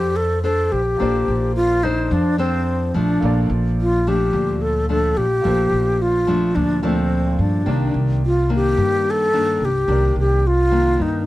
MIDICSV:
0, 0, Header, 1, 5, 480
1, 0, Start_track
1, 0, Tempo, 555042
1, 864, Time_signature, 4, 2, 24, 8
1, 9740, End_track
2, 0, Start_track
2, 0, Title_t, "Grand piano"
2, 0, Program_c, 0, 0
2, 0, Control_c, 0, 64, 127
2, 0, Note_on_c, 0, 65, 45
2, 0, Note_on_c, 0, 69, 39
2, 0, Note_on_c, 0, 72, 37
2, 0, Note_on_c, 0, 74, 45
2, 815, Note_off_c, 0, 65, 0
2, 824, Note_off_c, 0, 69, 0
2, 830, Note_on_c, 0, 65, 43
2, 833, Note_off_c, 0, 72, 0
2, 842, Note_off_c, 0, 74, 0
2, 850, Note_on_c, 0, 69, 37
2, 867, Note_on_c, 0, 72, 38
2, 885, Note_on_c, 0, 74, 46
2, 2735, Note_off_c, 0, 65, 0
2, 2745, Note_off_c, 0, 69, 0
2, 2754, Note_off_c, 0, 72, 0
2, 2763, Note_off_c, 0, 74, 0
2, 2763, Note_on_c, 0, 65, 46
2, 2776, Note_on_c, 0, 69, 37
2, 2796, Note_on_c, 0, 58, 40
2, 2798, Control_c, 0, 64, 0
2, 2812, Note_on_c, 0, 74, 48
2, 2926, Control_c, 0, 64, 127
2, 4661, Note_off_c, 0, 65, 0
2, 4668, Note_off_c, 0, 69, 0
2, 4678, Note_off_c, 0, 58, 0
2, 4680, Note_on_c, 0, 65, 41
2, 4686, Note_off_c, 0, 74, 0
2, 4697, Note_on_c, 0, 69, 37
2, 4712, Note_on_c, 0, 58, 37
2, 4731, Note_on_c, 0, 72, 48
2, 5869, Note_off_c, 0, 65, 0
2, 5878, Note_off_c, 0, 69, 0
2, 5886, Note_off_c, 0, 58, 0
2, 5895, Note_off_c, 0, 72, 0
2, 5898, Note_on_c, 0, 65, 34
2, 5908, Note_on_c, 0, 69, 28
2, 5911, Note_on_c, 0, 58, 29
2, 5922, Note_on_c, 0, 74, 36
2, 6609, Note_on_c, 0, 67, 38
2, 6614, Note_off_c, 0, 58, 0
2, 6622, Note_off_c, 0, 65, 0
2, 6627, Note_off_c, 0, 69, 0
2, 6627, Note_on_c, 0, 58, 37
2, 6633, Note_off_c, 0, 74, 0
2, 6640, Control_c, 0, 64, 0
2, 6646, Note_on_c, 0, 74, 46
2, 6772, Control_c, 0, 64, 127
2, 8502, Note_off_c, 0, 67, 0
2, 8510, Note_off_c, 0, 58, 0
2, 8520, Note_off_c, 0, 74, 0
2, 8542, Note_on_c, 0, 67, 40
2, 8559, Note_on_c, 0, 70, 40
2, 8574, Note_on_c, 0, 74, 42
2, 9740, Note_off_c, 0, 67, 0
2, 9740, Note_off_c, 0, 70, 0
2, 9740, Note_off_c, 0, 74, 0
2, 9740, End_track
3, 0, Start_track
3, 0, Title_t, "Alto flute"
3, 0, Program_c, 1, 73
3, 0, Note_on_c, 1, 67, 86
3, 140, Note_on_c, 1, 69, 90
3, 153, Note_off_c, 1, 67, 0
3, 366, Note_off_c, 1, 69, 0
3, 371, Note_on_c, 1, 69, 85
3, 622, Note_on_c, 1, 67, 88
3, 635, Note_off_c, 1, 69, 0
3, 1340, Note_off_c, 1, 67, 0
3, 1345, Note_on_c, 1, 65, 83
3, 1586, Note_on_c, 1, 63, 70
3, 1598, Note_off_c, 1, 65, 0
3, 1838, Note_on_c, 1, 62, 78
3, 1851, Note_off_c, 1, 63, 0
3, 2060, Note_off_c, 1, 62, 0
3, 2065, Note_on_c, 1, 60, 76
3, 2564, Note_on_c, 1, 62, 73
3, 2577, Note_off_c, 1, 60, 0
3, 3042, Note_off_c, 1, 62, 0
3, 3295, Note_on_c, 1, 65, 84
3, 3528, Note_on_c, 1, 67, 81
3, 3541, Note_off_c, 1, 65, 0
3, 3991, Note_on_c, 1, 69, 88
3, 4004, Note_off_c, 1, 67, 0
3, 4229, Note_off_c, 1, 69, 0
3, 4234, Note_on_c, 1, 69, 84
3, 4472, Note_on_c, 1, 67, 94
3, 4485, Note_off_c, 1, 69, 0
3, 5205, Note_on_c, 1, 65, 83
3, 5218, Note_off_c, 1, 67, 0
3, 5666, Note_on_c, 1, 62, 78
3, 5679, Note_off_c, 1, 65, 0
3, 5918, Note_on_c, 1, 60, 76
3, 5931, Note_off_c, 1, 62, 0
3, 6408, Note_on_c, 1, 62, 67
3, 6421, Note_off_c, 1, 60, 0
3, 6884, Note_off_c, 1, 62, 0
3, 7143, Note_on_c, 1, 65, 79
3, 7349, Note_off_c, 1, 65, 0
3, 7397, Note_on_c, 1, 67, 92
3, 7874, Note_on_c, 1, 69, 94
3, 7887, Note_off_c, 1, 67, 0
3, 8345, Note_on_c, 1, 67, 84
3, 8358, Note_off_c, 1, 69, 0
3, 8805, Note_off_c, 1, 67, 0
3, 8816, Note_on_c, 1, 67, 85
3, 9054, Note_on_c, 1, 65, 86
3, 9067, Note_off_c, 1, 67, 0
3, 9529, Note_on_c, 1, 63, 73
3, 9542, Note_off_c, 1, 65, 0
3, 9740, Note_off_c, 1, 63, 0
3, 9740, End_track
4, 0, Start_track
4, 0, Title_t, "Nylon-string guitar"
4, 0, Program_c, 2, 24
4, 0, Note_on_c, 2, 53, 46
4, 0, Note_on_c, 2, 62, 54
4, 0, Note_on_c, 2, 69, 63
4, 0, Note_on_c, 2, 72, 64
4, 342, Note_off_c, 2, 62, 0
4, 344, Note_off_c, 2, 69, 0
4, 346, Note_off_c, 2, 72, 0
4, 377, Note_on_c, 2, 62, 59
4, 383, Note_on_c, 2, 69, 48
4, 385, Note_on_c, 2, 72, 60
4, 691, Note_off_c, 2, 62, 0
4, 691, Note_off_c, 2, 69, 0
4, 694, Note_off_c, 2, 72, 0
4, 837, Note_off_c, 2, 53, 0
4, 861, Note_on_c, 2, 58, 52
4, 863, Note_on_c, 2, 62, 46
4, 866, Note_on_c, 2, 72, 52
4, 869, Note_on_c, 2, 69, 51
4, 1545, Note_off_c, 2, 62, 0
4, 1547, Note_off_c, 2, 69, 0
4, 1548, Note_off_c, 2, 72, 0
4, 1586, Note_on_c, 2, 62, 61
4, 1591, Note_on_c, 2, 69, 56
4, 1595, Note_on_c, 2, 72, 68
4, 1801, Note_off_c, 2, 58, 0
4, 1826, Note_on_c, 2, 53, 53
4, 2028, Note_off_c, 2, 62, 0
4, 2031, Note_off_c, 2, 69, 0
4, 2031, Note_off_c, 2, 72, 0
4, 2060, Note_on_c, 2, 62, 62
4, 2066, Note_on_c, 2, 69, 63
4, 2070, Note_on_c, 2, 72, 67
4, 2505, Note_off_c, 2, 62, 0
4, 2508, Note_off_c, 2, 69, 0
4, 2510, Note_off_c, 2, 72, 0
4, 2535, Note_off_c, 2, 53, 0
4, 2546, Note_on_c, 2, 53, 58
4, 2553, Note_on_c, 2, 57, 60
4, 2557, Note_on_c, 2, 62, 66
4, 2789, Note_on_c, 2, 46, 48
4, 3468, Note_off_c, 2, 53, 0
4, 3472, Note_off_c, 2, 57, 0
4, 3474, Note_off_c, 2, 62, 0
4, 3519, Note_on_c, 2, 53, 57
4, 3521, Note_on_c, 2, 57, 60
4, 3527, Note_on_c, 2, 62, 55
4, 3725, Note_off_c, 2, 46, 0
4, 3748, Note_on_c, 2, 46, 52
4, 4195, Note_off_c, 2, 53, 0
4, 4195, Note_off_c, 2, 57, 0
4, 4199, Note_off_c, 2, 62, 0
4, 4228, Note_on_c, 2, 53, 53
4, 4231, Note_on_c, 2, 57, 56
4, 4236, Note_on_c, 2, 62, 50
4, 4537, Note_off_c, 2, 53, 0
4, 4539, Note_off_c, 2, 57, 0
4, 4540, Note_off_c, 2, 62, 0
4, 4684, Note_off_c, 2, 46, 0
4, 4705, Note_on_c, 2, 46, 46
4, 4707, Note_on_c, 2, 53, 45
4, 4709, Note_on_c, 2, 57, 48
4, 4713, Note_on_c, 2, 62, 48
4, 5388, Note_off_c, 2, 53, 0
4, 5390, Note_off_c, 2, 57, 0
4, 5392, Note_off_c, 2, 62, 0
4, 5424, Note_on_c, 2, 53, 60
4, 5431, Note_on_c, 2, 57, 58
4, 5431, Note_on_c, 2, 62, 60
4, 5642, Note_off_c, 2, 46, 0
4, 5673, Note_on_c, 2, 46, 53
4, 5867, Note_off_c, 2, 53, 0
4, 5870, Note_off_c, 2, 62, 0
4, 5871, Note_off_c, 2, 57, 0
4, 5904, Note_on_c, 2, 53, 69
4, 5908, Note_on_c, 2, 57, 65
4, 5911, Note_on_c, 2, 62, 70
4, 6587, Note_off_c, 2, 53, 0
4, 6588, Note_off_c, 2, 57, 0
4, 6591, Note_off_c, 2, 62, 0
4, 6606, Note_off_c, 2, 46, 0
4, 6625, Note_on_c, 2, 48, 46
4, 6626, Note_on_c, 2, 51, 45
4, 6629, Note_on_c, 2, 58, 44
4, 6632, Note_on_c, 2, 62, 50
4, 7103, Note_off_c, 2, 51, 0
4, 7105, Note_off_c, 2, 58, 0
4, 7106, Note_off_c, 2, 62, 0
4, 7344, Note_on_c, 2, 51, 56
4, 7349, Note_on_c, 2, 58, 61
4, 7351, Note_on_c, 2, 62, 54
4, 7561, Note_off_c, 2, 48, 0
4, 7587, Note_on_c, 2, 43, 49
4, 8026, Note_off_c, 2, 51, 0
4, 8029, Note_off_c, 2, 58, 0
4, 8029, Note_off_c, 2, 62, 0
4, 8067, Note_on_c, 2, 51, 51
4, 8072, Note_on_c, 2, 58, 51
4, 8074, Note_on_c, 2, 62, 55
4, 8375, Note_off_c, 2, 51, 0
4, 8377, Note_off_c, 2, 58, 0
4, 8379, Note_off_c, 2, 62, 0
4, 8522, Note_off_c, 2, 43, 0
4, 8537, Note_on_c, 2, 48, 45
4, 8541, Note_on_c, 2, 51, 47
4, 8544, Note_on_c, 2, 58, 44
4, 8546, Note_on_c, 2, 62, 51
4, 9019, Note_off_c, 2, 51, 0
4, 9022, Note_off_c, 2, 58, 0
4, 9022, Note_off_c, 2, 62, 0
4, 9262, Note_on_c, 2, 51, 56
4, 9266, Note_on_c, 2, 58, 59
4, 9270, Note_on_c, 2, 62, 68
4, 9477, Note_off_c, 2, 48, 0
4, 9499, Note_on_c, 2, 43, 47
4, 9705, Note_off_c, 2, 51, 0
4, 9707, Note_off_c, 2, 58, 0
4, 9708, Note_off_c, 2, 62, 0
4, 9740, Note_off_c, 2, 43, 0
4, 9740, End_track
5, 0, Start_track
5, 0, Title_t, "Upright bass"
5, 0, Program_c, 3, 32
5, 0, Note_on_c, 3, 41, 81
5, 590, Note_off_c, 3, 41, 0
5, 622, Note_on_c, 3, 34, 73
5, 846, Note_off_c, 3, 34, 0
5, 876, Note_on_c, 3, 34, 75
5, 1094, Note_off_c, 3, 34, 0
5, 1107, Note_on_c, 3, 34, 77
5, 1792, Note_off_c, 3, 34, 0
5, 1824, Note_on_c, 3, 41, 84
5, 2511, Note_off_c, 3, 41, 0
5, 2546, Note_on_c, 3, 34, 75
5, 2769, Note_off_c, 3, 34, 0
5, 2787, Note_on_c, 3, 34, 82
5, 3010, Note_off_c, 3, 34, 0
5, 3023, Note_on_c, 3, 34, 78
5, 3711, Note_off_c, 3, 34, 0
5, 3743, Note_on_c, 3, 38, 86
5, 4431, Note_off_c, 3, 38, 0
5, 4466, Note_on_c, 3, 34, 74
5, 4690, Note_off_c, 3, 34, 0
5, 4713, Note_on_c, 3, 34, 81
5, 4934, Note_off_c, 3, 34, 0
5, 4947, Note_on_c, 3, 34, 71
5, 5632, Note_off_c, 3, 34, 0
5, 5669, Note_on_c, 3, 38, 86
5, 6353, Note_off_c, 3, 38, 0
5, 6388, Note_on_c, 3, 43, 73
5, 6611, Note_off_c, 3, 43, 0
5, 6622, Note_on_c, 3, 36, 74
5, 6847, Note_off_c, 3, 36, 0
5, 6867, Note_on_c, 3, 36, 75
5, 7552, Note_off_c, 3, 36, 0
5, 7588, Note_on_c, 3, 43, 78
5, 8272, Note_off_c, 3, 43, 0
5, 8304, Note_on_c, 3, 36, 67
5, 8528, Note_off_c, 3, 36, 0
5, 8545, Note_on_c, 3, 36, 80
5, 8768, Note_off_c, 3, 36, 0
5, 8785, Note_on_c, 3, 36, 76
5, 9470, Note_off_c, 3, 36, 0
5, 9510, Note_on_c, 3, 43, 75
5, 9740, Note_off_c, 3, 43, 0
5, 9740, End_track
0, 0, End_of_file